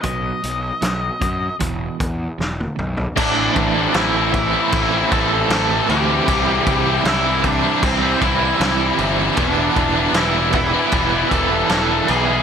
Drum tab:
CC |----------------|x-x-x-x-x-x-x-x-|x-x-x-x-x-x-x-x-|x-x-x-x-x-x-x-x-|
HH |x-x-x-x-x-x-----|----------------|----------------|----------------|
SD |----o-------o---|----o-------o---|----o-------o---|----o-------o---|
T1 |-------------o--|----------------|----------------|----------------|
T2 |--------------o-|----------------|----------------|----------------|
FT |---------------o|----------------|----------------|----------------|
BD |o-----o-o-o-----|o-o---o-o-o-----|o-o---o-o-o-----|o-o---o-o-o-----|